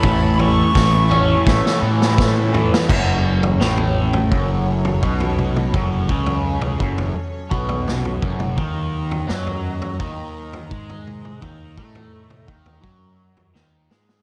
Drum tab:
CC |----------------|x---------------|----------------|----------------|
SD |----o---oo-oo--o|----o-----------|------------o---|----o-----------|
T2 |----------------|--------------oo|-----o------o-oo|--------------oo|
FT |o-o---o-------o-|o--o-o-o---o-o--|o--o-o-o---o-o--|o--o-o-o---o-o--|
BD |o---o---o---o---|o-------o---o---|o-o---o---o---o-|o-------o---o---|

CC |----------------|
SD |------------o-oo|
T2 |-----o----------|
FT |o--o-o-o---o----|
BD |o-o---o-o-------|